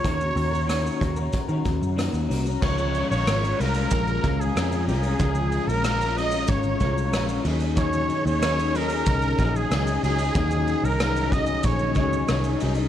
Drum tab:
CC |----------------|x---------------|----------------|----------------|
RD |----------------|--x-x-x-x-x-x-x-|x-x-x-x-x-x-x-x-|x-x-x-x-x-x-x-x-|
HH |x-x-x-x-x-x-x-x-|----------------|----------------|----------------|
SH |xxxxxxxxxxxxxxxx|-xxxxxxxxxxxxxxx|xxxxxxxxxxxxxxxx|xxxxxxxxxxxxxxxx|
SD |----r-------r---|----r-------r---|----r-------r---|----r-------r---|
BD |o-----o-o-o-----|o-------o-o-----|o-------o-o-----|o-------o-o-----|

CC |----------------|
RD |x-x-x-x-x-x-x-x-|
HH |----------------|
SH |xxxxxxxxxxxxxxxx|
SD |----r-------r---|
BD |o-----o-o-o-----|